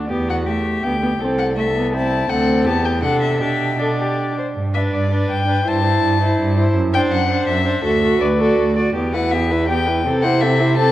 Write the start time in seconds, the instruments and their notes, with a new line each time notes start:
0.10 cello E2, viola B3, violin G4
0.28 violin F#4 F#5
0.46 viola A3, violin G4 E5
0.83 cello D2, viola B3, violin G5
1.02 viola B3
1.20 cello C2, viola C4, violin A4
1.38 violin F#5
1.57 viola A3, violin A4 E5
1.76 viola B3
1.92 viola C4, violin E4 A5
2.29 cello D2, viola C4, violin A4 F#5
2.64 cello E2, viola B3, violin G4 A5
2.85 violin G5
3.02 cello C3, viola D4, violin A4 F#5
3.21 violin E5
3.40 cello B2, viola D4, violin G4 E5
3.79 viola D4, violin A4 D5
3.99 violin G4
4.39 violin C5
4.55 cello G2
4.74 viola D4, violin B4 E5
4.93 cello G2, violin D5
5.11 viola D4, violin B4
5.29 cello G2, violin G5
5.47 viola D4, violin B4
5.66 cello G2, viola E4, violin C5 A5
5.84 viola E4, violin C5
6.02 cello G2
6.20 viola E4, violin C5
6.39 cello G2
6.57 viola E4, violin C5
6.75 cello F#2
6.93 viola D4, violin C5 G5
7.11 cello F#2, violin F#5
7.28 viola D4, violin C5
7.47 cello F#2, violin E5
7.65 viola D4, violin C5
7.83 cello D2, viola F#4, violin A4 E5
8.02 viola F#4, violin A4
8.19 cello D2, violin B4 D5
8.40 viola F#4, violin A4
8.57 cello D2
8.76 viola F#4, violin D5
8.95 cello E2, viola B3, violin G4
9.13 viola E4, violin B4 F#5
9.31 viola B3, violin G4 E5
9.51 viola E4, violin B4
9.68 viola B3, violin G4 G5
9.86 viola E4, violin B4
10.06 cello C3, viola C4, violin A4
10.23 viola E4, violin C5 F#5
10.41 viola C4, violin A4 E5
10.60 viola E4, violin C5
10.77 viola C4, violin A4 A5